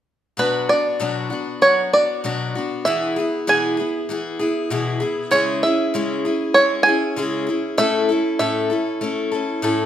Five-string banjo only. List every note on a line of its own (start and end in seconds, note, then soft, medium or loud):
0.39 0.70 B4 medium
0.69 1.62 D5 medium
1.62 1.93 C#5 medium
1.93 2.85 D5 medium
2.85 3.43 E5 medium
3.49 4.37 G#5 medium
5.31 5.60 C#5 medium
5.63 6.51 E5 medium
6.54 6.87 C#5 medium
6.83 7.78 G#5 medium
7.78 8.36 E5 medium
8.39 9.28 E5 medium